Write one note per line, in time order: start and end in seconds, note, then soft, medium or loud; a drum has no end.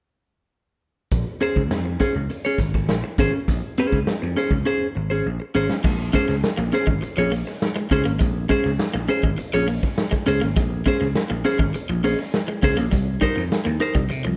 1.11 1.24 A#1 loud
1.11 kick loud
1.11 closed hi-hat medium
1.41 1.61 C#4 medium
1.41 1.62 G#4 medium
1.41 1.62 C5 medium
1.41 closed hi-hat medium
1.56 1.71 C#2 medium
1.56 kick medium
1.71 1.95 F2 medium
1.71 snare loud
1.71 closed hi-hat medium
1.85 muted clean electric guitar stroke soft
2.00 2.20 C#4 medium
2.00 2.14 G#4 medium
2.00 2.14 C5 medium
2.00 kick medium
2.00 snare soft
2.00 closed hi-hat medium
2.15 2.28 C#2 medium
2.15 muted clean electric guitar stroke soft
2.30 muted clean electric guitar stroke soft
2.30 closed hi-hat medium
2.44 2.59 C#4 medium
2.44 2.60 G#4 medium
2.44 2.61 C#5 medium
2.44 closed hi-hat soft
2.58 2.89 G#1 medium
2.58 muted clean electric guitar stroke soft
2.58 kick medium
2.58 closed hi-hat medium
2.74 muted clean electric guitar stroke soft
2.74 kick medium
2.74 snare soft
2.89 3.01 A#1 medium
2.89 snare loud
2.89 closed hi-hat medium
3.04 muted clean electric guitar stroke soft
3.18 3.30 G#1 medium
3.18 3.39 C#4 medium
3.18 3.34 G#4 medium
3.18 3.32 C5 loud
3.18 kick loud
3.18 closed hi-hat medium
3.34 muted clean electric guitar stroke soft
3.48 3.60 A#1 medium
3.48 kick medium
3.48 closed hi-hat medium
3.77 3.98 C#4 medium
3.77 3.99 G#4 medium
3.77 3.99 C5 medium
3.77 closed hi-hat soft
3.92 4.05 C#2 medium
3.92 kick medium
4.07 snare loud
4.07 closed hi-hat medium
4.22 4.35 F2 medium
4.22 muted clean electric guitar stroke soft
4.37 4.57 C#4 medium
4.37 4.52 G#4 medium
4.37 4.51 C5 medium
4.37 snare soft
4.37 closed hi-hat medium
4.51 4.63 C#2 medium
4.51 muted clean electric guitar stroke soft
4.51 kick medium
4.65 4.86 C#4 medium
4.65 4.87 G#4 medium
4.65 4.87 C5 medium
4.95 5.21 G#1 medium
4.95 muted clean electric guitar stroke soft
5.10 5.27 C#4 soft
5.10 5.27 G#4 soft
5.10 5.26 C5 medium
5.26 5.38 A#1 medium
5.40 muted clean electric guitar stroke soft
5.55 5.67 G#1 medium
5.55 5.75 C#4 medium
5.55 5.69 G#4 medium
5.55 5.68 C5 loud
5.69 muted clean electric guitar stroke soft
5.69 snare medium
5.84 6.09 A#1 loud
5.84 5.95 G#3 medium
5.84 kick loud
5.84 crash medium
6.13 6.24 G#3 medium
6.13 6.34 C#4 medium
6.13 6.35 G#4 medium
6.13 6.35 C5 loud
6.13 kick medium
6.13 closed hi-hat medium
6.28 6.41 C#2 medium
6.28 muted clean electric guitar stroke soft
6.28 snare soft
6.44 snare loud
6.44 closed hi-hat medium
6.57 6.70 A#1 medium
6.57 6.68 A#3 medium
6.57 muted clean electric guitar stroke medium
6.72 6.93 C#4 medium
6.72 6.88 G#4 medium
6.72 6.87 C5 medium
6.72 muted clean electric guitar stroke soft
6.72 snare soft
6.72 closed hi-hat medium
6.87 7.00 G#1 medium
6.87 6.98 G#3 medium
6.87 muted clean electric guitar stroke medium
6.87 kick medium
7.03 muted clean electric guitar stroke soft
7.03 muted slap bass stroke soft
7.03 closed hi-hat medium
7.17 7.42 A#1 medium
7.17 7.28 F3 medium
7.17 7.32 C#4 medium
7.17 7.32 G#4 medium
7.17 7.34 C#5 medium
7.32 7.43 A#3 medium
7.32 open hi-hat medium
7.47 muted clean electric guitar stroke soft
7.47 snare soft
7.62 snare loud
7.62 closed hi-hat medium
7.76 7.87 G#3 medium
7.76 muted clean electric guitar stroke soft
7.76 closed hi-hat soft
7.90 8.03 C#2 loud
7.90 8.11 C#4 medium
7.90 8.05 G#4 medium
7.90 8.04 C5 medium
7.90 muted clean electric guitar stroke soft
7.90 kick medium
7.90 closed hi-hat medium
8.05 8.18 G#1 medium
8.05 8.16 A#3 medium
8.05 muted clean electric guitar stroke soft
8.05 closed hi-hat medium
8.19 8.45 A#1 loud
8.19 8.30 G#3 medium
8.19 kick loud
8.19 closed hi-hat medium
8.49 8.60 G#3 medium
8.49 8.70 C#4 medium
8.49 8.70 G#4 medium
8.49 8.71 C5 medium
8.49 kick medium
8.49 closed hi-hat medium
8.64 8.77 C#2 medium
8.64 muted clean electric guitar stroke soft
8.64 snare soft
8.79 snare loud
8.79 closed hi-hat medium
8.94 9.07 A#1 medium
8.94 9.04 A#3 medium
8.94 muted clean electric guitar stroke soft
9.08 9.29 C#4 medium
9.08 9.23 G#4 medium
9.08 9.23 C5 medium
9.08 muted clean electric guitar stroke soft
9.08 closed hi-hat medium
9.23 9.36 G#1 medium
9.23 9.34 G#3 medium
9.23 muted clean electric guitar stroke soft
9.23 kick medium
9.38 muted clean electric guitar stroke soft
9.38 muted slap bass stroke soft
9.38 closed hi-hat medium
9.53 9.78 A#1 medium
9.53 9.64 F3 medium
9.53 9.67 C#4 medium
9.53 9.67 G#4 medium
9.53 9.69 C#5 medium
9.68 9.79 A#3 medium
9.68 muted clean electric guitar stroke soft
9.68 open hi-hat medium
9.83 muted clean electric guitar stroke soft
9.83 kick medium
9.83 snare soft
9.98 snare loud
9.98 closed hi-hat medium
10.11 10.22 G#3 medium
10.11 muted clean electric guitar stroke soft
10.11 kick medium
10.11 snare soft
10.11 closed hi-hat soft
10.26 10.40 C#2 loud
10.26 10.47 C#4 medium
10.26 10.42 G#4 medium
10.26 10.41 C5 medium
10.26 muted clean electric guitar stroke soft
10.26 closed hi-hat medium
10.41 10.54 G#1 medium
10.41 10.52 A#3 medium
10.41 muted clean electric guitar stroke soft
10.41 snare soft
10.56 10.81 A#1 loud
10.56 10.67 G#3 medium
10.56 kick loud
10.56 closed hi-hat medium
10.86 10.96 G#3 medium
10.86 11.06 C#4 medium
10.86 11.07 G#4 medium
10.86 11.07 C5 medium
10.86 kick medium
10.86 closed hi-hat medium
11.01 11.13 C#2 medium
11.01 muted clean electric guitar stroke soft
11.01 snare soft
11.15 snare loud
11.15 closed hi-hat medium
11.30 11.43 A#1 medium
11.30 11.41 A#3 medium
11.30 muted clean electric guitar stroke soft
11.45 11.65 C#4 medium
11.45 11.60 G#4 medium
11.45 11.58 C5 loud
11.45 muted clean electric guitar stroke soft
11.45 snare soft
11.45 closed hi-hat medium
11.59 11.72 G#1 loud
11.59 11.70 G#3 medium
11.59 muted clean electric guitar stroke soft
11.59 kick loud
11.75 muted clean electric guitar stroke soft
11.75 muted slap bass stroke soft
11.75 closed hi-hat medium
11.89 12.14 A#1 medium
11.89 12.00 F3 medium
12.04 12.15 A#3 medium
12.04 12.20 C#4 medium
12.04 12.19 G#4 medium
12.04 12.18 C5 medium
12.04 open hi-hat medium
12.19 muted clean electric guitar stroke soft
12.19 snare soft
12.34 snare loud
12.34 closed hi-hat medium
12.48 12.59 G#3 medium
12.48 muted clean electric guitar stroke medium
12.48 closed hi-hat soft
12.62 12.75 C#2 loud
12.62 12.83 C#4 medium
12.62 12.77 G#4 loud
12.62 12.76 C5 loud
12.62 muted clean electric guitar stroke soft
12.62 kick loud
12.62 closed hi-hat medium
12.77 12.90 A#1 medium
12.77 12.88 A#3 medium
12.77 muted clean electric guitar stroke soft
12.77 closed hi-hat medium
12.91 13.17 C2 loud
12.91 13.03 G3 medium
12.91 kick loud
12.91 closed hi-hat medium
13.21 13.32 G3 medium
13.21 13.42 D#4 medium
13.21 13.42 A#4 medium
13.21 13.43 C5 medium
13.21 kick medium
13.21 closed hi-hat medium
13.36 13.49 F2 medium
13.36 muted clean electric guitar stroke medium
13.36 snare soft
13.52 snare loud
13.52 closed hi-hat medium
13.65 13.78 D#2 medium
13.65 13.76 A#3 medium
13.65 muted clean electric guitar stroke soft
13.80 14.01 D#4 medium
13.80 13.95 A#4 medium
13.80 13.94 C5 loud
13.80 muted clean electric guitar stroke soft
13.80 closed hi-hat medium
13.95 14.08 C2 medium
13.95 14.06 G3 medium
13.95 muted clean electric guitar stroke soft
13.95 kick loud
14.09 14.23 C3 loud
14.09 muted clean electric guitar stroke soft
14.09 closed hi-hat medium
14.25 14.37 C2 loud
14.25 14.36 F3 medium
14.25 muted clean electric guitar stroke soft